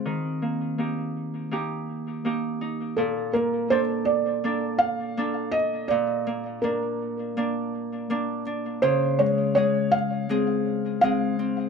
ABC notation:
X:1
M:4/4
L:1/8
Q:"Swing 16ths" 1/4=82
K:Bb
V:1 name="Felt piano"
z8 | A B c d2 f2 e | d2 B4- B z | c _d d f3 f2 |]
V:2 name="Harp"
E, B, [B,EG]2 [B,EG]2 [B,EG] E | B,, B, [B,DA]2 [B,DA]2 [B,DA]2 | B,, B, [B,D]2 [B,D]2 [B,D] D | _D, _A, [A,_A]2 [A,CA]2 [A,CA] C |]